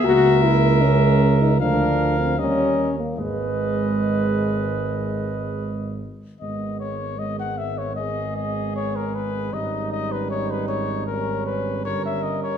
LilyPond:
<<
  \new Staff \with { instrumentName = "Trumpet" } { \time 4/4 \key gis \minor \tempo 4 = 77 e''2 eis''4 dis''8 r8 | dis''2.~ dis''8 r8 | dis''8 cis''8 dis''16 fis''16 e''16 cis''16 dis''8 dis''8 cis''16 ais'16 b'8 | dis''8 dis''16 b'16 cis''16 b'16 cis''8 ais'8 b'8 cis''16 e''16 dis''16 cis''16 | }
  \new Staff \with { instrumentName = "Flugelhorn" } { \time 4/4 \key gis \minor ais'2 ais'4 ais'8 r8 | b'2.~ b'8 r8 | r2 gis'2 | dis'4 dis'4 cis'4 ais'4 | }
  \new Staff \with { instrumentName = "French horn" } { \time 4/4 \key gis \minor fis'8 e'8 cis'8. dis'16 d'8. bis16 cis'8. ais16 | gis2.~ gis8 r8 | b4 b4 b2 | cis'2 cis'4 cis'4 | }
  \new Staff \with { instrumentName = "Euphonium" } { \clef bass \time 4/4 \key gis \minor ais4 gis4 eis4 g8 r8 | gis2.~ gis8 r8 | gis4 gis4 gis2 | g2 g4 g4 | }
  \new Staff \with { instrumentName = "Tuba" } { \clef bass \time 4/4 \key gis \minor cis,2 d,4 dis,4 | gis,,2.~ gis,,8 r8 | gis,,1 | gis,,2. g,,4 | }
>>